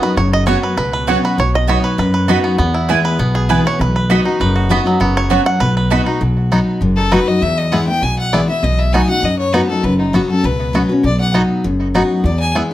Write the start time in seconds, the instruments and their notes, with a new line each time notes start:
Already playing: steel-string acoustic guitar F#2, five-string banjo B3 F#4 B4
0.02 steel-string acoustic guitar D#4 F#4, five-string banjo B4
0.16 upright bass F#1, steel-string acoustic guitar F#2, five-string banjo C#5
0.33 five-string banjo D#5
0.46 steel-string acoustic guitar F#3 B3 C#4 F#4, mandolin B3 F#4 C#5 F#5, five-string banjo C#5
0.63 five-string banjo B4
0.77 upright bass C#2, steel-string acoustic guitar B2, five-string banjo B4
0.93 five-string banjo B4
1.07 steel-string acoustic guitar F#3 B3 C#4 F#4, mandolin B3 F#4 C#5 F#5, five-string banjo F#4
1.25 five-string banjo B4
1.38 upright bass B1, steel-string acoustic guitar B2, five-string banjo C#5
1.55 five-string banjo D#5
1.67 steel-string acoustic guitar F#3 B3 D#4 F#4, mandolin B3 F#4 D#5 B5, five-string banjo C#5
1.84 five-string banjo B4
1.98 upright bass F#2, steel-string acoustic guitar F#2, five-string banjo B4
2.14 five-string banjo B4
2.28 steel-string acoustic guitar F#3 B3 D#4 F#4, mandolin B3 F#4 D#5 B5, five-string banjo F#4
2.44 five-string banjo B3
2.58 upright bass E2, steel-string acoustic guitar E2, five-string banjo B3
2.74 five-string banjo E4
2.89 steel-string acoustic guitar E3 G#3 B3 E4, mandolin B3 E4 B4 G#5, five-string banjo G#4
3.05 five-string banjo B4
3.19 upright bass B1, steel-string acoustic guitar B2, five-string banjo B3
3.35 five-string banjo G#4
3.49 steel-string acoustic guitar E3 G#3 B3 E4, mandolin B3 E4 B4 G#5, five-string banjo B4
3.65 steel-string acoustic guitar B3 E4, five-string banjo C#5
3.79 upright bass B1, steel-string acoustic guitar B2, five-string banjo B4
3.96 five-string banjo B4
4.10 steel-string acoustic guitar F#3 B3 D#4 F#4, mandolin B3 F#4 D#5 B5, five-string banjo F#4
4.25 five-string banjo D#4, steel-string acoustic guitar D#4 F#4
4.40 upright bass F#1, steel-string acoustic guitar F#2, five-string banjo B4
4.56 five-string banjo F#4
4.69 steel-string acoustic guitar F#3 B3 D#4 F#4, mandolin B3 F#4 D#5 B5, five-string banjo B3
4.85 five-string banjo F#3, steel-string acoustic guitar D#4 F#4
5.00 upright bass F#1, steel-string acoustic guitar F#2, five-string banjo B3
5.17 five-string banjo C#5
5.30 steel-string acoustic guitar F#3 B3 C#4 F#4, mandolin B3 F#4 C#5 F#5, five-string banjo F#4
5.46 five-string banjo F#5
5.60 upright bass B1, steel-string acoustic guitar B2, five-string banjo B4
5.77 five-string banjo B4
5.90 steel-string acoustic guitar F#3 B3 D#4 F#4, mandolin B3 F#4 D#5 B5, five-string banjo F#4
6.06 five-string banjo D#4, steel-string acoustic guitar D#4 F#4
6.21 upright bass B1, steel-string acoustic guitar B2
6.51 steel-string acoustic guitar F#3 B3 D#4 F#4, five-string banjo B3 D#4 F#4
6.81 upright bass F#1, steel-string acoustic guitar F#2
6.96 fiddle A4
7.12 steel-string acoustic guitar F#3 B3 D#4 F#4, five-string banjo B3 D#4 F#4, fiddle B4
7.28 steel-string acoustic guitar D#4 F#4, fiddle D#5
7.41 upright bass E2, steel-string acoustic guitar E2, fiddle E5
7.58 fiddle D#5
7.72 steel-string acoustic guitar E3 G#3 B3 E4, five-string banjo B3 E4 G#4, fiddle F#5
7.87 steel-string acoustic guitar B3 E4, fiddle G5
8.01 upright bass B1, steel-string acoustic guitar B2, fiddle G#5
8.19 fiddle F#5
8.33 steel-string acoustic guitar E3 G#3 B3 E4, five-string banjo B3 E4 G#4, fiddle D5
8.48 steel-string acoustic guitar B3 E4, fiddle E5
8.63 upright bass B1, steel-string acoustic guitar B2, fiddle D#5
8.79 fiddle E5
8.93 steel-string acoustic guitar F#3 B3 D#4 F#4, five-string banjo B3 D#4 F#4, fiddle G#5
9.09 steel-string acoustic guitar D#4 F#4, fiddle F#5
9.22 upright bass F#2, steel-string acoustic guitar F#2, fiddle D#5
9.39 fiddle C#5
9.53 steel-string acoustic guitar F#3 B3 D#4 F#4, five-string banjo B3 D#4 F#4, fiddle B4
9.69 steel-string acoustic guitar D#4 F#4, fiddle A4
9.83 upright bass F#1, steel-string acoustic guitar F#2, fiddle B4
9.98 fiddle D#4
10.13 steel-string acoustic guitar F#3 B3 C#4 F#4, five-string banjo B3 F#4, fiddle F#4
10.29 steel-string acoustic guitar C#4 F#4, fiddle A4
10.43 upright bass C#2, steel-string acoustic guitar B2, fiddle B4
10.73 steel-string acoustic guitar F#3 B3 C#4 F#4, five-string banjo B3 F#4
10.89 steel-string acoustic guitar C#4 F#4
11.03 upright bass B1, steel-string acoustic guitar B2, fiddle D5
11.20 fiddle F#5
11.33 steel-string acoustic guitar F#3 B3 D#4 F#4, five-string banjo B3 D#4 F#4
11.64 upright bass F#1, steel-string acoustic guitar F#2
11.94 steel-string acoustic guitar F#3 B3 D#4 F#4, five-string banjo B3 D#4 F#4
12.24 upright bass E2, steel-string acoustic guitar E2, fiddle D5
12.40 fiddle G#5
12.55 steel-string acoustic guitar E3 G#3 B3 E4, five-string banjo B3 E4 G#4